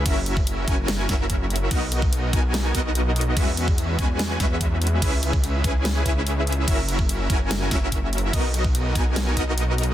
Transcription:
<<
  \new Staff \with { instrumentName = "Supersaw synth" } { \time 4/4 \key b \major \tempo 4 = 145 <cis' e' fis' ais' e''>4. <cis' e' fis' ais' gis''>4 <cis' e' fis' ais' e''>4. | <b dis' fis' ais' dis''>4. <b dis' fis' ais' gis''>4 <b dis' fis' ais' dis''>4. | <gis cis' fis' b' e''>4. <gis cis' fis' b' gis''>4 <gis cis' fis' b' e''>4. | <cis' e' gis' b' e''>4. <cis' e' gis' b' gis''>4 <cis' e' gis' b' e''>4. |
<cis' e' fis' ais' e''>4. <cis' e' fis' ais' gis''>4 <cis' e' fis' ais' e''>4. | <b dis' fis' ais' dis''>4. <b dis' fis' ais' gis''>4 <b dis' fis' ais' dis''>4. | }
  \new Staff \with { instrumentName = "Detuned saw bass" } { \clef bass \time 4/4 \key b \major fis,,4. fis,,4 fis,,4. | b,,4. b,,4 b,,4. | e,4. e,4 e,4. | cis,4. cis,4 cis,4. |
fis,,4. fis,,4 fis,,4. | b,,4. b,,4 b,,4. | }
  \new DrumStaff \with { instrumentName = "Drums" } \drummode { \time 4/4 <cymc hh bd>8 hh16 bd16 hh8 <hh bd>8 <hh sn>8 <hh bd sn>8 <hh bd>8 hh32 hh16. | <cymc hh bd>8 hh16 bd16 hh8 <hh bd>8 <hh sn>8 <hh bd>8 hh8 hh32 hh16. | <cymc hh bd>8 hh16 bd16 hh8 <hh bd>8 <hh sn>8 <hh bd sn>8 <hh bd>8 hh32 hh16. | <cymc hh bd>8 hh16 bd16 hh8 <hh bd>8 <hh sn>8 <hh bd>8 hh8 hh32 hh16. |
<cymc hh bd>8 hh16 bd16 hh8 <hh bd>8 <hh sn>8 <hh bd sn>8 <hh bd>8 hh32 hh16. | <cymc hh bd>8 hh16 bd16 hh8 <hh bd>8 <hh sn>8 <hh bd>8 hh8 hh32 hh16. | }
>>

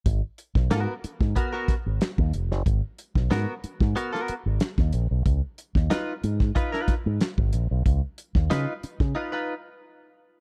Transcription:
<<
  \new Staff \with { instrumentName = "Clean electric guitar" } { \time 4/4 \key gis \dorian \tempo 4 = 92 r4 <b fis' ais'>16 r8. <b fis' ais'>16 <b fis' ais'>16 r4. | r4 <b fis' ais'>16 r8. <b fis' ais'>16 <b fis' ais'>16 r4. | r4 <dis' eis' b'>16 r8. <dis' eis' b'>16 <dis' eis' b'>16 r4. | r4 <dis' eis' b'>16 r8. <dis' eis' b'>16 <dis' eis' b'>16 r4. | }
  \new Staff \with { instrumentName = "Fingered electric bass" } { \clef bass \time 4/4 \key gis \dorian gis,,16 r8 b,,16 gis,16 r8 gis,16 r8. gis,,16 r16 dis,16 eis,,16 fis,,16 | gis,,16 r8 b,,16 gis,16 r8 gis,16 r8. gis,,16 r16 dis,16 ais,,16 b,,16 | cis,16 r8 dis,16 r8 gis,8 r8. gis,16 r16 gis,,16 ais,,16 b,,16 | cis,16 r8 dis,16 cis16 r8 cis16 r2 | }
  \new DrumStaff \with { instrumentName = "Drums" } \drummode { \time 4/4 <hh bd>8 hh16 <bd sn>16 <hh sn>8 hh16 <bd sn>16 <hh bd>8 <hh bd sn>8 <hh sn>16 bd16 hh16 sn16 | <hh bd>8 hh16 <bd sn>16 <hh sn>8 hh16 <bd sn>16 hh16 sn16 hh8 <hh sn>16 <bd sn>16 hh8 | <hh bd>8 hh16 <bd sn>16 <hh sn>8 hh16 <bd sn>16 <hh bd>16 sn16 <hh bd sn>8 <hh sn>16 bd16 hh8 | <hh bd>8 hh16 <bd sn>16 <hh sn>8 hh16 <bd sn>16 r4 r4 | }
>>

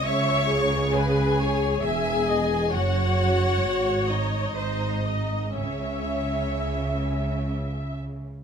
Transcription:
<<
  \new Staff \with { instrumentName = "Violin section" } { \time 3/4 \key cis \minor \tempo 4 = 65 cis'''4 gis''4 gis''4 | fis''4. dis''4. | cis''2 r4 | }
  \new Staff \with { instrumentName = "Viola section" } { \time 3/4 \key cis \minor e''8 gis'8 b'8 cis''8 e''8 dis''8 | cis''2 bis'8 dis''8 | e''2~ e''8 r8 | }
  \new Staff \with { instrumentName = "Violin section" } { \time 3/4 \key cis \minor cis''4 gis'4 gis'4 | fis'4. dis'4. | cis'2 r4 | }
  \new Staff \with { instrumentName = "Cello section" } { \clef bass \time 3/4 \key cis \minor cis2 e,4 | fis,4 gis,4 gis,4 | cis2. | }
  \new Staff \with { instrumentName = "Double bass section" } { \clef bass \time 3/4 \key cis \minor cis,2 e,,4 | fis,,4 gis,,4 gis,,4 | cis,2. | }
>>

